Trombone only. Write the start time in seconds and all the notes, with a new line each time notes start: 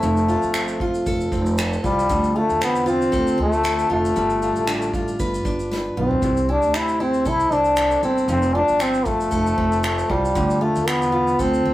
Already playing: A3
1.85 G3
2.37 A3
2.64 B3
2.89 C4
3.42 A3
3.92 A3
5.99 C4
6.51 D4
6.76 E4
7.01 C4
7.28 E4
7.53 D4
8.04 C4
8.31 C4
8.56 D4
8.81 C4
9.06 A3
10.10 G3
10.62 A3
10.88 B3
11.40 C4